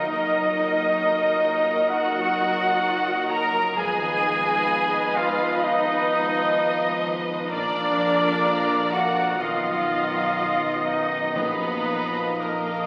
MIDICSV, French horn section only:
0, 0, Header, 1, 2, 480
1, 0, Start_track
1, 0, Key_signature, -6, "minor"
1, 0, Tempo, 913242
1, 39, Time_signature, 4, 2, 24, 8
1, 999, Tempo, 936037
1, 4839, Tempo, 980392
1, 5799, Tempo, 1034483
1, 6502, End_track
2, 0, Start_track
2, 0, Title_t, "French horn section"
2, 0, Program_c, 0, 60
2, 0, Note_on_c, 0, 63, 74
2, 36, Note_on_c, 0, 58, 79
2, 1863, Note_off_c, 0, 58, 0
2, 1863, Note_off_c, 0, 63, 0
2, 1950, Note_on_c, 0, 59, 82
2, 1950, Note_on_c, 0, 63, 88
2, 3856, Note_off_c, 0, 59, 0
2, 3856, Note_off_c, 0, 63, 0
2, 3877, Note_on_c, 0, 62, 92
2, 3879, Note_on_c, 0, 58, 93
2, 4819, Note_off_c, 0, 62, 0
2, 4838, Note_on_c, 0, 63, 79
2, 4839, Note_off_c, 0, 58, 0
2, 4839, Note_on_c, 0, 59, 80
2, 5800, Note_off_c, 0, 59, 0
2, 5804, Note_on_c, 0, 58, 73
2, 6502, Note_off_c, 0, 58, 0
2, 6502, Note_off_c, 0, 63, 0
2, 6502, End_track
0, 0, End_of_file